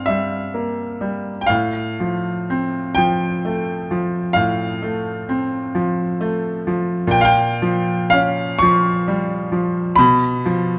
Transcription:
grand piano
Already playing: G2 G3 C4 F5 G5
0.06 G3 E5
0.54 A#3
1.01 G3
1.41 G5
1.46 A2 F5
2.00 F3
2.50 C4
2.95 F3 G5
3.45 A3
3.91 F3
4.33 A2 F5
4.82 A3
5.29 C4
5.75 F3
6.21 A3
6.67 F3
7.07 A#2 G5
7.21 F5 G5
7.62 F3
8.10 C#4 F5
8.59 F3 C#6
9.08 G3
9.52 F3
9.96 B2 B5
10.46 F3

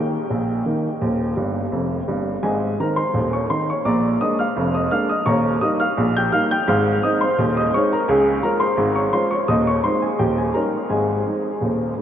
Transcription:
upright piano
Already playing: D#3 A#3 D#4 G4 D#5 G5
0.30 A#1 A#2
0.66 D#3 A#3 D#4
1.01 D#1 D#2
1.37 G1 G2
1.72 F1 F2
2.08 G1 G2
2.43 G#1 G#2 G#4 D#5 G#5
2.80 D#3 C4 D#4 A#4 A#5
2.96 C5 C6
3.14 D#1 D#2
3.33 C#5 C#6
3.50 D#3 C4 D#4 C5 C6
3.70 C#5 C#6
3.85 A#1 A#2 D5 A#5 D6
4.21 G#3 A#3 D4 D#5 D#6
4.39 F5 F6
4.57 F1 F2
4.75 D#5 D#6
4.91 G#3 A#3 D4 F5 F6
5.09 D#5 D#6
5.26 D#1 D#2 C#5 A#5 C#6
5.61 G3 A#3 D#4 D#5 D#6
5.80 F5 F6
5.97 A#1 A#2
6.17 G5 G6
6.32 G3 A#3 D#4 F5 F6
6.51 G5 G6
6.68 G#1 G#2 F5 F6
7.03 G#3 C4 D#4 D#5 D#6
7.21 C5 C6
7.38 D#1 D#2
7.57 D#5 D#6
7.74 G#3 C4 D#4 C#5 C#6
7.93 A#4 A#5
8.08 C#2 C#3 G#4 F5 G#5
8.43 G#3 C#4 F4 A#4 A#5
8.60 C5 C6
8.77 G#1 G#2
8.96 C#5 C#6
9.13 G#3 C#4 F4 C5 C6
9.31 C#5 C#6
9.48 D#1 D#2 D#5 D#6
9.67 C#5 C#6
9.84 G#3 C4 D#4 C5 C6
10.02 G#4 G#5
10.19 D#1 D#2 G4 G5
10.38 G#4 G#5
10.54 G3 C#4 D#4 A#4 A#5
10.90 G#1 G#2 G#4 D#5 G#5
11.26 G#3 C4 D#4
11.61 D#1 D#2
11.97 G#3 C4 D#4

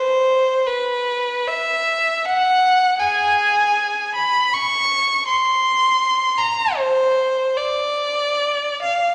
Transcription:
violin
Already playing: C5
0.66 B4
1.48 E5
2.26 F#5
2.99 G#4 G#5
4.15 B5
4.53 C#6
5.27 C6
6.38 A#5
6.77 C5
7.56 D5
8.82 F5

